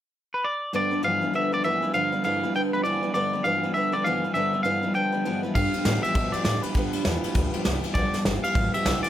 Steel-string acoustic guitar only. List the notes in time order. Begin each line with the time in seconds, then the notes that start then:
0.73 G2 D3 F3 B3 D4 B4
0.91 F3 B3 D4 B4
1.03 G2 D3 F3 B3 D4 B4
1.21 F3 B3 D4 B4
1.33 F3 B3 D4 B4
1.52 F3 B3 D4 B4
1.64 G2 D3 F3 B3 D4 B4
1.82 F3 B3 D4 B4
1.94 G2 D3 F3 B3 D4 B4
2.12 F3 B3 D4 B4
2.24 G2 D3 F3 B3 D4 B4
2.43 F3 B3 D4 B4
2.55 F3 B3 D4 B4
2.73 F3 B3 D4 B4
2.85 G2 D3 F3 B3 D4 B4
3.03 F3 B3 D4 B4
3.14 G2 D3 F3 B3 D4 B4
3.33 F3 B3 D4 B4
3.45 G2 D3 F3 B3 D4 B4
3.63 F3 B3 D4 B4
3.74 F3 B3 D4 B4
3.92 F3 B3 D4 B4
4.05 G2 D3 F3 B3 D4 B4
4.24 F3 B3 D4 B4
4.35 G2 D3 F3 B3 D4 B4
4.53 F3 B3 D4 B4
4.64 G2 D3 F3 B3 D4 B4
4.83 F3 B3 D4 B4
4.94 F3 B3 D4 B4
5.12 F3 B3 D4 B4
5.25 G2 D3 F3 B3 D4 B4
5.43 F3 B3 D4 B4
5.55 G2 D3 F3 B3 F4 G4
5.74 F3 B3 F4 G4
5.86 G2 D3 F3 B3 F4 G4
6.04 F3 B3 F4 G4
6.15 F3 B3 F4 G4
6.34 F3 B3 F4 G4
6.46 G2 D3 F3 B3 F4 G4
6.64 F3 B3 F4 G4
6.77 G2 D3 F3 B3 F4 G4
6.95 F3 B3 F4 G4
7.06 G2 D3 F3 B3 F4 G4
7.25 F3 B3 F4 G4
7.35 F3 B3 F4 G4
7.54 F3 B3 F4 G4
7.65 G2 D3 F3 B3 F4 G4
7.84 F3 B3 F4 G4
7.96 G2 D3 F3 B3 F4 G4
8.14 F3 B3 F4 G4
8.25 G2 D3 F3 B3 F4 G4
8.43 F3 B3 F4 G4
8.54 F3 B3 F4 G4
8.74 F3 B3 F4 G4
8.86 G2 D3 F3 B3 F4 G4
9.04 F3 B3 F4 G4